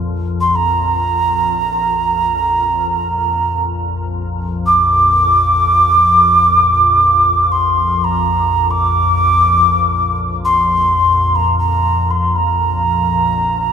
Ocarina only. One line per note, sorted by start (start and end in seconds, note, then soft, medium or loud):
0.41 0.57 C6 medium
0.56 3.63 A#5 medium
4.66 7.53 D6 medium
7.52 8.06 C6 medium
8.04 8.72 A#5 medium
8.71 10.18 D6 medium
10.45 11.37 C6 medium
11.36 11.58 A#5 medium
11.59 12.12 A#5 medium
12.11 12.38 C6 medium
12.36 13.72 A#5 medium